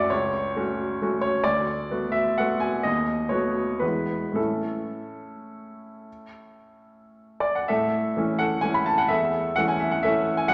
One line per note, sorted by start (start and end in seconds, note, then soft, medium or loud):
0.00 0.12 F#2 soft
0.00 0.12 A3 soft
0.00 0.13 C#4 soft
0.00 0.13 F#4 soft
0.00 0.13 D5 medium
0.00 0.12 E5 medium
0.00 0.13 F#5 medium
0.00 0.12 G#5 medium
0.10 0.54 C#2 soft
0.10 1.20 C#5 medium
0.56 0.98 A3 soft
0.56 0.98 C#4 soft
0.56 0.98 F#4 soft
1.02 1.42 A3 soft
1.02 1.42 C#4 soft
1.02 1.42 F#4 soft
1.21 1.44 C#5 medium
1.44 1.89 D2 soft
1.44 2.13 D5 medium
1.91 2.35 A3 soft
1.91 2.35 B3 soft
1.91 2.35 F#4 soft
2.12 2.37 E5 medium
2.38 2.82 A3 soft
2.38 2.82 B3 soft
2.38 2.82 F#4 soft
2.38 2.62 F#5 medium
2.60 2.84 G#5 medium
2.83 3.30 D#2 soft
2.83 3.30 D#5 medium
3.29 3.77 A3 soft
3.29 3.78 B3 soft
3.29 3.78 F#4 soft
3.29 3.81 C#5 medium
3.79 4.35 E2 soft
3.79 4.33 G#3 soft
3.79 4.33 B3 soft
3.79 4.33 E4 soft
3.79 4.36 B4 soft
4.32 7.61 A2 soft
4.32 7.62 A3 soft
4.32 7.63 C#4 soft
4.32 7.42 A4 soft
4.36 7.63 E4 soft
7.40 7.55 D5 medium
7.55 7.68 F#5 soft
7.68 8.15 A2 soft
7.68 8.36 A4 medium
7.68 8.40 E5 medium
8.16 8.60 E3 soft
8.16 8.60 A3 soft
8.16 8.61 C#4 soft
8.39 8.62 A4 soft
8.39 8.63 F#5 medium
8.61 9.07 E3 soft
8.61 9.07 A3 soft
8.61 9.07 C#4 soft
8.61 8.74 G#5 medium
8.74 8.87 B5 medium
8.86 8.99 A5 medium
8.98 9.10 F#5 medium
9.08 9.56 E2 soft
9.08 9.54 A4 soft
9.08 9.57 E5 medium
9.56 10.00 E3 soft
9.56 10.01 A3 soft
9.56 10.01 C#4 soft
9.56 9.69 F#5 medium
9.68 9.81 G#5 medium
9.80 9.92 E5 medium
9.91 10.04 F#5 medium
10.03 10.45 E3 soft
10.03 10.46 A3 soft
10.03 10.46 C#4 soft
10.03 10.36 A4 soft
10.03 10.38 E5 medium
10.37 10.49 G#5 medium
10.48 10.54 F#2 soft
10.48 10.54 F#5 medium